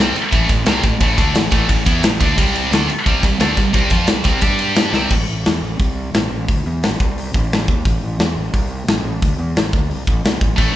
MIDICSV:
0, 0, Header, 1, 6, 480
1, 0, Start_track
1, 0, Key_signature, 0, "minor"
1, 0, Tempo, 341880
1, 1412, Time_signature, 4, 2, 24, 8
1, 15106, End_track
2, 0, Start_track
2, 0, Title_t, "Distorted electric guitar"
2, 0, Program_c, 0, 30
2, 0, Note_on_c, 0, 48, 103
2, 0, Note_on_c, 0, 55, 102
2, 0, Note_on_c, 0, 60, 115
2, 199, Note_off_c, 0, 48, 0
2, 207, Note_off_c, 0, 55, 0
2, 210, Note_off_c, 0, 60, 0
2, 440, Note_on_c, 0, 45, 100
2, 448, Note_on_c, 0, 52, 105
2, 455, Note_on_c, 0, 57, 116
2, 680, Note_off_c, 0, 45, 0
2, 684, Note_off_c, 0, 52, 0
2, 687, Note_off_c, 0, 57, 0
2, 699, Note_on_c, 0, 45, 65
2, 706, Note_on_c, 0, 52, 73
2, 888, Note_off_c, 0, 45, 0
2, 892, Note_off_c, 0, 52, 0
2, 933, Note_on_c, 0, 48, 86
2, 939, Note_on_c, 0, 55, 97
2, 955, Note_on_c, 0, 60, 100
2, 1166, Note_off_c, 0, 48, 0
2, 1169, Note_off_c, 0, 55, 0
2, 1177, Note_off_c, 0, 60, 0
2, 1178, Note_on_c, 0, 45, 69
2, 1184, Note_on_c, 0, 52, 73
2, 1367, Note_off_c, 0, 45, 0
2, 1370, Note_off_c, 0, 52, 0
2, 1417, Note_on_c, 0, 45, 89
2, 1431, Note_on_c, 0, 52, 110
2, 1434, Note_on_c, 0, 57, 106
2, 1637, Note_off_c, 0, 45, 0
2, 1643, Note_on_c, 0, 50, 97
2, 1645, Note_off_c, 0, 57, 0
2, 1654, Note_off_c, 0, 52, 0
2, 1661, Note_on_c, 0, 57, 99
2, 1661, Note_on_c, 0, 62, 108
2, 1880, Note_off_c, 0, 50, 0
2, 1889, Note_off_c, 0, 57, 0
2, 1889, Note_off_c, 0, 62, 0
2, 1898, Note_on_c, 0, 45, 64
2, 1906, Note_on_c, 0, 52, 75
2, 2086, Note_off_c, 0, 45, 0
2, 2091, Note_off_c, 0, 52, 0
2, 2127, Note_on_c, 0, 45, 90
2, 2133, Note_on_c, 0, 52, 102
2, 2143, Note_on_c, 0, 57, 104
2, 2358, Note_off_c, 0, 45, 0
2, 2364, Note_off_c, 0, 52, 0
2, 2369, Note_off_c, 0, 57, 0
2, 2375, Note_on_c, 0, 45, 74
2, 2383, Note_on_c, 0, 52, 77
2, 2564, Note_off_c, 0, 45, 0
2, 2569, Note_off_c, 0, 52, 0
2, 2611, Note_on_c, 0, 52, 99
2, 2624, Note_on_c, 0, 59, 106
2, 2628, Note_on_c, 0, 64, 110
2, 2843, Note_off_c, 0, 52, 0
2, 2850, Note_off_c, 0, 59, 0
2, 2851, Note_off_c, 0, 64, 0
2, 2857, Note_on_c, 0, 45, 68
2, 2864, Note_on_c, 0, 52, 73
2, 3045, Note_off_c, 0, 45, 0
2, 3048, Note_off_c, 0, 52, 0
2, 3096, Note_on_c, 0, 50, 93
2, 3101, Note_on_c, 0, 57, 94
2, 3118, Note_on_c, 0, 62, 122
2, 3325, Note_off_c, 0, 50, 0
2, 3328, Note_off_c, 0, 57, 0
2, 3335, Note_on_c, 0, 48, 104
2, 3336, Note_off_c, 0, 62, 0
2, 3344, Note_on_c, 0, 55, 102
2, 3347, Note_on_c, 0, 60, 120
2, 3804, Note_off_c, 0, 48, 0
2, 3809, Note_off_c, 0, 55, 0
2, 3810, Note_off_c, 0, 60, 0
2, 3817, Note_on_c, 0, 50, 93
2, 3827, Note_on_c, 0, 57, 98
2, 3837, Note_on_c, 0, 62, 101
2, 4046, Note_off_c, 0, 50, 0
2, 4050, Note_off_c, 0, 57, 0
2, 4055, Note_off_c, 0, 62, 0
2, 4303, Note_on_c, 0, 48, 104
2, 4311, Note_on_c, 0, 55, 108
2, 4317, Note_on_c, 0, 60, 111
2, 4528, Note_off_c, 0, 48, 0
2, 4532, Note_off_c, 0, 55, 0
2, 4535, Note_off_c, 0, 60, 0
2, 4542, Note_on_c, 0, 48, 73
2, 4555, Note_on_c, 0, 55, 74
2, 4727, Note_off_c, 0, 48, 0
2, 4733, Note_off_c, 0, 55, 0
2, 4768, Note_on_c, 0, 50, 89
2, 4779, Note_on_c, 0, 57, 91
2, 4787, Note_on_c, 0, 62, 98
2, 5001, Note_off_c, 0, 50, 0
2, 5006, Note_off_c, 0, 57, 0
2, 5010, Note_off_c, 0, 62, 0
2, 5014, Note_on_c, 0, 48, 62
2, 5025, Note_on_c, 0, 55, 76
2, 5203, Note_off_c, 0, 48, 0
2, 5208, Note_off_c, 0, 55, 0
2, 5237, Note_on_c, 0, 48, 103
2, 5248, Note_on_c, 0, 55, 97
2, 5261, Note_on_c, 0, 60, 101
2, 5475, Note_off_c, 0, 48, 0
2, 5481, Note_off_c, 0, 55, 0
2, 5487, Note_off_c, 0, 60, 0
2, 5496, Note_on_c, 0, 53, 93
2, 5505, Note_on_c, 0, 60, 101
2, 5512, Note_on_c, 0, 65, 100
2, 5722, Note_off_c, 0, 53, 0
2, 5725, Note_off_c, 0, 60, 0
2, 5727, Note_on_c, 0, 48, 68
2, 5731, Note_on_c, 0, 55, 78
2, 5733, Note_off_c, 0, 65, 0
2, 5920, Note_off_c, 0, 48, 0
2, 5921, Note_off_c, 0, 55, 0
2, 5954, Note_on_c, 0, 48, 84
2, 5959, Note_on_c, 0, 55, 94
2, 5970, Note_on_c, 0, 60, 95
2, 6181, Note_off_c, 0, 55, 0
2, 6194, Note_off_c, 0, 48, 0
2, 6198, Note_on_c, 0, 55, 106
2, 6200, Note_off_c, 0, 60, 0
2, 6206, Note_on_c, 0, 62, 105
2, 6210, Note_on_c, 0, 67, 107
2, 6912, Note_off_c, 0, 55, 0
2, 6920, Note_on_c, 0, 48, 91
2, 6921, Note_off_c, 0, 62, 0
2, 6923, Note_off_c, 0, 67, 0
2, 6928, Note_on_c, 0, 55, 87
2, 6937, Note_on_c, 0, 60, 111
2, 7158, Note_off_c, 0, 48, 0
2, 7162, Note_off_c, 0, 55, 0
2, 7167, Note_off_c, 0, 60, 0
2, 14831, Note_on_c, 0, 45, 93
2, 14843, Note_on_c, 0, 52, 103
2, 14846, Note_on_c, 0, 57, 106
2, 15061, Note_off_c, 0, 45, 0
2, 15063, Note_off_c, 0, 52, 0
2, 15083, Note_off_c, 0, 57, 0
2, 15106, End_track
3, 0, Start_track
3, 0, Title_t, "Fingered electric bass"
3, 0, Program_c, 1, 33
3, 0, Note_on_c, 1, 36, 100
3, 201, Note_off_c, 1, 36, 0
3, 451, Note_on_c, 1, 33, 94
3, 675, Note_off_c, 1, 33, 0
3, 696, Note_on_c, 1, 33, 83
3, 918, Note_off_c, 1, 33, 0
3, 938, Note_on_c, 1, 36, 91
3, 1155, Note_off_c, 1, 36, 0
3, 1163, Note_on_c, 1, 33, 81
3, 1391, Note_off_c, 1, 33, 0
3, 1410, Note_on_c, 1, 33, 95
3, 1634, Note_off_c, 1, 33, 0
3, 1658, Note_on_c, 1, 38, 110
3, 1878, Note_off_c, 1, 38, 0
3, 1897, Note_on_c, 1, 33, 89
3, 2117, Note_off_c, 1, 33, 0
3, 2129, Note_on_c, 1, 33, 97
3, 2353, Note_off_c, 1, 33, 0
3, 2368, Note_on_c, 1, 33, 81
3, 2592, Note_off_c, 1, 33, 0
3, 2614, Note_on_c, 1, 40, 100
3, 2835, Note_off_c, 1, 40, 0
3, 2851, Note_on_c, 1, 33, 81
3, 3073, Note_off_c, 1, 33, 0
3, 3101, Note_on_c, 1, 38, 103
3, 3319, Note_off_c, 1, 38, 0
3, 3335, Note_on_c, 1, 36, 95
3, 3778, Note_off_c, 1, 36, 0
3, 3806, Note_on_c, 1, 38, 104
3, 4030, Note_off_c, 1, 38, 0
3, 4295, Note_on_c, 1, 36, 86
3, 4515, Note_off_c, 1, 36, 0
3, 4537, Note_on_c, 1, 36, 85
3, 4730, Note_off_c, 1, 36, 0
3, 4738, Note_on_c, 1, 38, 99
3, 4975, Note_off_c, 1, 38, 0
3, 5018, Note_on_c, 1, 36, 79
3, 5233, Note_off_c, 1, 36, 0
3, 5242, Note_on_c, 1, 36, 98
3, 5468, Note_off_c, 1, 36, 0
3, 5482, Note_on_c, 1, 41, 102
3, 5708, Note_off_c, 1, 41, 0
3, 5722, Note_on_c, 1, 36, 84
3, 5948, Note_off_c, 1, 36, 0
3, 5963, Note_on_c, 1, 36, 89
3, 6189, Note_off_c, 1, 36, 0
3, 6213, Note_on_c, 1, 43, 91
3, 6881, Note_off_c, 1, 43, 0
3, 6913, Note_on_c, 1, 36, 89
3, 7144, Note_off_c, 1, 36, 0
3, 7168, Note_on_c, 1, 33, 95
3, 7392, Note_off_c, 1, 33, 0
3, 7414, Note_on_c, 1, 33, 82
3, 7636, Note_off_c, 1, 33, 0
3, 7645, Note_on_c, 1, 40, 88
3, 7872, Note_off_c, 1, 40, 0
3, 7880, Note_on_c, 1, 33, 70
3, 8109, Note_off_c, 1, 33, 0
3, 8136, Note_on_c, 1, 36, 88
3, 8582, Note_off_c, 1, 36, 0
3, 8612, Note_on_c, 1, 33, 83
3, 8836, Note_off_c, 1, 33, 0
3, 8878, Note_on_c, 1, 33, 72
3, 9091, Note_off_c, 1, 33, 0
3, 9099, Note_on_c, 1, 38, 87
3, 9321, Note_off_c, 1, 38, 0
3, 9350, Note_on_c, 1, 40, 98
3, 9567, Note_off_c, 1, 40, 0
3, 9600, Note_on_c, 1, 33, 81
3, 9812, Note_off_c, 1, 33, 0
3, 9828, Note_on_c, 1, 36, 91
3, 10270, Note_off_c, 1, 36, 0
3, 10316, Note_on_c, 1, 33, 90
3, 10754, Note_off_c, 1, 33, 0
3, 10786, Note_on_c, 1, 39, 89
3, 11006, Note_off_c, 1, 39, 0
3, 11027, Note_on_c, 1, 33, 94
3, 11246, Note_off_c, 1, 33, 0
3, 11270, Note_on_c, 1, 33, 86
3, 11481, Note_off_c, 1, 33, 0
3, 11489, Note_on_c, 1, 40, 99
3, 11717, Note_off_c, 1, 40, 0
3, 11729, Note_on_c, 1, 33, 79
3, 11957, Note_off_c, 1, 33, 0
3, 11976, Note_on_c, 1, 36, 88
3, 12424, Note_off_c, 1, 36, 0
3, 12454, Note_on_c, 1, 33, 83
3, 12679, Note_off_c, 1, 33, 0
3, 12688, Note_on_c, 1, 33, 73
3, 12916, Note_off_c, 1, 33, 0
3, 12947, Note_on_c, 1, 38, 90
3, 13166, Note_off_c, 1, 38, 0
3, 13175, Note_on_c, 1, 40, 103
3, 13400, Note_off_c, 1, 40, 0
3, 13431, Note_on_c, 1, 33, 86
3, 13648, Note_off_c, 1, 33, 0
3, 13670, Note_on_c, 1, 38, 90
3, 13887, Note_off_c, 1, 38, 0
3, 13896, Note_on_c, 1, 36, 85
3, 14119, Note_off_c, 1, 36, 0
3, 14137, Note_on_c, 1, 33, 85
3, 14360, Note_off_c, 1, 33, 0
3, 14382, Note_on_c, 1, 36, 91
3, 14602, Note_off_c, 1, 36, 0
3, 14613, Note_on_c, 1, 33, 77
3, 14837, Note_off_c, 1, 33, 0
3, 14855, Note_on_c, 1, 33, 86
3, 15060, Note_off_c, 1, 33, 0
3, 15106, End_track
4, 0, Start_track
4, 0, Title_t, "Muted distorted electric guitar strokes"
4, 220, Note_on_c, 9, 29, 56
4, 360, Note_off_c, 9, 29, 0
4, 4069, Note_on_c, 9, 29, 62
4, 4210, Note_off_c, 9, 29, 0
4, 15106, End_track
5, 0, Start_track
5, 0, Title_t, "Muted fingered electric bass strokes"
5, 224, Note_on_c, 9, 29, 43
5, 365, Note_off_c, 9, 29, 0
5, 4047, Note_on_c, 9, 29, 44
5, 4187, Note_off_c, 9, 29, 0
5, 15106, End_track
6, 0, Start_track
6, 0, Title_t, "Drums"
6, 222, Note_on_c, 9, 51, 75
6, 363, Note_off_c, 9, 51, 0
6, 457, Note_on_c, 9, 36, 108
6, 457, Note_on_c, 9, 51, 106
6, 597, Note_off_c, 9, 36, 0
6, 598, Note_off_c, 9, 51, 0
6, 694, Note_on_c, 9, 36, 99
6, 696, Note_on_c, 9, 51, 81
6, 834, Note_off_c, 9, 36, 0
6, 836, Note_off_c, 9, 51, 0
6, 923, Note_on_c, 9, 51, 106
6, 934, Note_on_c, 9, 38, 123
6, 1064, Note_off_c, 9, 51, 0
6, 1075, Note_off_c, 9, 38, 0
6, 1169, Note_on_c, 9, 51, 79
6, 1174, Note_on_c, 9, 36, 96
6, 1309, Note_off_c, 9, 51, 0
6, 1314, Note_off_c, 9, 36, 0
6, 1408, Note_on_c, 9, 51, 109
6, 1414, Note_on_c, 9, 36, 118
6, 1548, Note_off_c, 9, 51, 0
6, 1555, Note_off_c, 9, 36, 0
6, 1656, Note_on_c, 9, 36, 118
6, 1658, Note_on_c, 9, 51, 89
6, 1797, Note_off_c, 9, 36, 0
6, 1798, Note_off_c, 9, 51, 0
6, 1893, Note_on_c, 9, 51, 108
6, 1904, Note_on_c, 9, 38, 107
6, 2033, Note_off_c, 9, 51, 0
6, 2045, Note_off_c, 9, 38, 0
6, 2129, Note_on_c, 9, 51, 79
6, 2135, Note_on_c, 9, 36, 110
6, 2270, Note_off_c, 9, 51, 0
6, 2275, Note_off_c, 9, 36, 0
6, 2376, Note_on_c, 9, 36, 91
6, 2376, Note_on_c, 9, 51, 113
6, 2516, Note_off_c, 9, 36, 0
6, 2516, Note_off_c, 9, 51, 0
6, 2618, Note_on_c, 9, 36, 122
6, 2618, Note_on_c, 9, 51, 97
6, 2758, Note_off_c, 9, 36, 0
6, 2759, Note_off_c, 9, 51, 0
6, 2853, Note_on_c, 9, 51, 114
6, 2865, Note_on_c, 9, 38, 124
6, 2994, Note_off_c, 9, 51, 0
6, 3005, Note_off_c, 9, 38, 0
6, 3098, Note_on_c, 9, 36, 113
6, 3102, Note_on_c, 9, 51, 92
6, 3238, Note_off_c, 9, 36, 0
6, 3243, Note_off_c, 9, 51, 0
6, 3341, Note_on_c, 9, 36, 114
6, 3345, Note_on_c, 9, 51, 116
6, 3482, Note_off_c, 9, 36, 0
6, 3486, Note_off_c, 9, 51, 0
6, 3586, Note_on_c, 9, 51, 84
6, 3726, Note_off_c, 9, 51, 0
6, 3829, Note_on_c, 9, 51, 103
6, 3840, Note_on_c, 9, 38, 107
6, 3969, Note_off_c, 9, 51, 0
6, 3981, Note_off_c, 9, 38, 0
6, 4065, Note_on_c, 9, 51, 78
6, 4206, Note_off_c, 9, 51, 0
6, 4299, Note_on_c, 9, 36, 103
6, 4303, Note_on_c, 9, 51, 95
6, 4439, Note_off_c, 9, 36, 0
6, 4443, Note_off_c, 9, 51, 0
6, 4538, Note_on_c, 9, 36, 101
6, 4548, Note_on_c, 9, 51, 83
6, 4678, Note_off_c, 9, 36, 0
6, 4689, Note_off_c, 9, 51, 0
6, 4773, Note_on_c, 9, 51, 98
6, 4784, Note_on_c, 9, 38, 112
6, 4914, Note_off_c, 9, 51, 0
6, 4925, Note_off_c, 9, 38, 0
6, 5011, Note_on_c, 9, 51, 81
6, 5015, Note_on_c, 9, 36, 91
6, 5152, Note_off_c, 9, 51, 0
6, 5156, Note_off_c, 9, 36, 0
6, 5245, Note_on_c, 9, 51, 111
6, 5253, Note_on_c, 9, 36, 117
6, 5386, Note_off_c, 9, 51, 0
6, 5394, Note_off_c, 9, 36, 0
6, 5476, Note_on_c, 9, 51, 89
6, 5489, Note_on_c, 9, 36, 107
6, 5616, Note_off_c, 9, 51, 0
6, 5629, Note_off_c, 9, 36, 0
6, 5714, Note_on_c, 9, 51, 107
6, 5726, Note_on_c, 9, 38, 116
6, 5855, Note_off_c, 9, 51, 0
6, 5866, Note_off_c, 9, 38, 0
6, 5951, Note_on_c, 9, 51, 89
6, 5967, Note_on_c, 9, 36, 112
6, 6092, Note_off_c, 9, 51, 0
6, 6108, Note_off_c, 9, 36, 0
6, 6194, Note_on_c, 9, 51, 109
6, 6208, Note_on_c, 9, 36, 115
6, 6334, Note_off_c, 9, 51, 0
6, 6348, Note_off_c, 9, 36, 0
6, 6440, Note_on_c, 9, 51, 88
6, 6580, Note_off_c, 9, 51, 0
6, 6680, Note_on_c, 9, 51, 108
6, 6691, Note_on_c, 9, 38, 117
6, 6820, Note_off_c, 9, 51, 0
6, 6831, Note_off_c, 9, 38, 0
6, 6931, Note_on_c, 9, 38, 75
6, 7071, Note_off_c, 9, 38, 0
6, 7163, Note_on_c, 9, 49, 107
6, 7171, Note_on_c, 9, 36, 101
6, 7304, Note_off_c, 9, 49, 0
6, 7311, Note_off_c, 9, 36, 0
6, 7657, Note_on_c, 9, 46, 55
6, 7668, Note_on_c, 9, 38, 112
6, 7797, Note_off_c, 9, 46, 0
6, 7809, Note_off_c, 9, 38, 0
6, 8134, Note_on_c, 9, 46, 52
6, 8137, Note_on_c, 9, 36, 99
6, 8274, Note_off_c, 9, 46, 0
6, 8278, Note_off_c, 9, 36, 0
6, 8619, Note_on_c, 9, 46, 55
6, 8630, Note_on_c, 9, 38, 115
6, 8759, Note_off_c, 9, 46, 0
6, 8771, Note_off_c, 9, 38, 0
6, 9105, Note_on_c, 9, 36, 106
6, 9118, Note_on_c, 9, 46, 57
6, 9245, Note_off_c, 9, 36, 0
6, 9259, Note_off_c, 9, 46, 0
6, 9589, Note_on_c, 9, 46, 60
6, 9600, Note_on_c, 9, 38, 114
6, 9729, Note_off_c, 9, 46, 0
6, 9740, Note_off_c, 9, 38, 0
6, 9830, Note_on_c, 9, 36, 97
6, 9970, Note_off_c, 9, 36, 0
6, 10079, Note_on_c, 9, 46, 62
6, 10219, Note_off_c, 9, 46, 0
6, 10311, Note_on_c, 9, 36, 109
6, 10452, Note_off_c, 9, 36, 0
6, 10565, Note_on_c, 9, 46, 61
6, 10576, Note_on_c, 9, 38, 111
6, 10705, Note_off_c, 9, 46, 0
6, 10717, Note_off_c, 9, 38, 0
6, 10786, Note_on_c, 9, 36, 105
6, 10926, Note_off_c, 9, 36, 0
6, 11027, Note_on_c, 9, 36, 100
6, 11030, Note_on_c, 9, 46, 55
6, 11167, Note_off_c, 9, 36, 0
6, 11171, Note_off_c, 9, 46, 0
6, 11501, Note_on_c, 9, 46, 56
6, 11513, Note_on_c, 9, 38, 104
6, 11642, Note_off_c, 9, 46, 0
6, 11653, Note_off_c, 9, 38, 0
6, 11986, Note_on_c, 9, 36, 101
6, 11992, Note_on_c, 9, 46, 58
6, 12127, Note_off_c, 9, 36, 0
6, 12132, Note_off_c, 9, 46, 0
6, 12463, Note_on_c, 9, 46, 54
6, 12475, Note_on_c, 9, 38, 108
6, 12604, Note_off_c, 9, 46, 0
6, 12615, Note_off_c, 9, 38, 0
6, 12951, Note_on_c, 9, 36, 102
6, 12961, Note_on_c, 9, 46, 55
6, 13091, Note_off_c, 9, 36, 0
6, 13101, Note_off_c, 9, 46, 0
6, 13425, Note_on_c, 9, 46, 58
6, 13436, Note_on_c, 9, 38, 108
6, 13565, Note_off_c, 9, 46, 0
6, 13577, Note_off_c, 9, 38, 0
6, 13665, Note_on_c, 9, 36, 100
6, 13805, Note_off_c, 9, 36, 0
6, 13912, Note_on_c, 9, 46, 59
6, 14053, Note_off_c, 9, 46, 0
6, 14143, Note_on_c, 9, 36, 113
6, 14283, Note_off_c, 9, 36, 0
6, 14388, Note_on_c, 9, 46, 64
6, 14399, Note_on_c, 9, 38, 109
6, 14528, Note_off_c, 9, 46, 0
6, 14539, Note_off_c, 9, 38, 0
6, 14619, Note_on_c, 9, 36, 111
6, 14760, Note_off_c, 9, 36, 0
6, 14853, Note_on_c, 9, 49, 96
6, 14855, Note_on_c, 9, 36, 104
6, 14994, Note_off_c, 9, 49, 0
6, 14995, Note_off_c, 9, 36, 0
6, 15106, End_track
0, 0, End_of_file